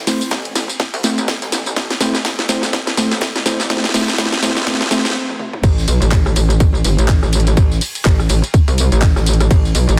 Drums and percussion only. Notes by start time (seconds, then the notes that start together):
0.07 snare, open hi-hat, tambourine
0.21 closed hi-hat, tambourine
0.31 kick, snare, closed hi-hat, ride, tambourine
0.45 closed hi-hat
0.55 snare, open hi-hat, ride, tambourine
0.70 closed hi-hat, ride, tambourine
0.80 kick, snare, closed hi-hat, ride, tambourine
0.94 open hi-hat
1.03 snare, open hi-hat, ride, tambourine
1.18 closed hi-hat, tambourine
1.28 kick, snare, closed hi-hat, ride, tambourine
1.42 snare, closed hi-hat
1.52 snare, open hi-hat, ride, tambourine
1.66 closed hi-hat, tambourine
1.76 kick, snare, closed hi-hat, ride, tambourine
1.90 snare, closed hi-hat
2.00 snare, open hi-hat, ride, tambourine
2.15 snare, closed hi-hat, tambourine
2.25 kick, snare, closed hi-hat, ride, tambourine
2.39 snare, closed hi-hat
2.48 snare, open hi-hat, ride, tambourine
2.63 snare, closed hi-hat, tambourine
2.73 kick, snare, closed hi-hat, ride, tambourine
2.87 snare, closed hi-hat
2.97 snare, open hi-hat, ride, tambourine
3.11 snare, closed hi-hat, tambourine
3.21 kick, snare, closed hi-hat, ride, tambourine
3.36 snare, closed hi-hat
3.46 snare, open hi-hat, ride, tambourine
3.60 snare, tambourine
3.70 kick, snare, closed hi-hat, ride, tambourine
3.77 snare
3.84 snare, closed hi-hat
3.89 snare
3.94 snare, open hi-hat, tambourine
4.01 snare
4.08 snare, closed hi-hat, tambourine
4.13 snare
4.18 kick, snare, closed hi-hat, ride, tambourine
4.25 snare
4.32 snare, closed hi-hat
4.37 snare
4.42 snare, open hi-hat, ride, tambourine
4.50 snare
4.56 snare, closed hi-hat, ride, tambourine
4.62 snare
4.67 kick, snare, closed hi-hat, ride, tambourine
4.74 snare
4.81 snare, open hi-hat
4.86 snare
4.91 snare, open hi-hat, ride, tambourine
4.98 snare
5.05 snare, closed hi-hat, tambourine
5.10 snare
5.29 high tom
5.39 mid tom
5.53 mid tom
5.63 kick, closed hi-hat, ride, tambourine, crash
5.78 snare, tambourine
5.88 open hi-hat, ride, tambourine
6.02 closed hi-hat, tambourine
6.12 kick, snare, clap, closed hi-hat, ride, tambourine
6.26 cross-stick, tambourine
6.36 open hi-hat, ride, tambourine
6.50 closed hi-hat, tambourine
6.60 kick, closed hi-hat, ride, tambourine
6.75 tambourine
6.84 snare, open hi-hat, ride, tambourine
6.99 closed hi-hat, tambourine
7.08 kick, snare, clap, closed hi-hat, ride, tambourine
7.23 cross-stick, tambourine
7.32 open hi-hat, ride, tambourine
7.40 closed hi-hat
7.47 closed hi-hat, tambourine
7.57 kick, closed hi-hat, ride, tambourine
7.72 snare, tambourine
7.81 open hi-hat, tambourine
7.95 closed hi-hat, tambourine
8.05 kick, snare, clap, closed hi-hat, ride, tambourine
8.19 cross-stick, tambourine
8.29 open hi-hat, ride, tambourine
8.44 closed hi-hat, ride, tambourine
8.54 kick, closed hi-hat, ride, tambourine
8.68 open hi-hat, tambourine
8.78 open hi-hat, ride, tambourine
8.92 closed hi-hat, tambourine
9.02 kick, snare, clap, closed hi-hat, ride, tambourine
9.16 cross-stick, snare, tambourine
9.26 snare, open hi-hat, ride, tambourine
9.33 closed hi-hat
9.41 cross-stick, closed hi-hat, tambourine
9.50 kick, closed hi-hat, ride, tambourine
9.65 snare, tambourine
9.75 open hi-hat, ride, tambourine
9.89 closed hi-hat, tambourine